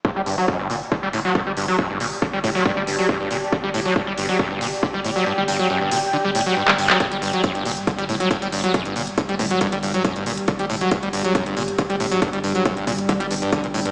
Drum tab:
HH |--o---o---o---o-|--o---o---o---o-|--o---o---o---o-|--o---o---o---o-|
CP |----------------|----------------|----------------|-------------x-x|
BD |o---o---o---o---|o---o-o-o---o---|o---o---o---o---|----------------|

HH |xxoxxxoxxxoxxxox|xxoxxxoxxxoxxxox|xxoxxxoxxxoxxxox|xxoxxxoxxxoxxxox|
CP |----------------|----------------|----------------|----------------|
BD |o---o---o---o---|o---o-o-o---o---|o---o---o---o---|o---o-o-o---o---|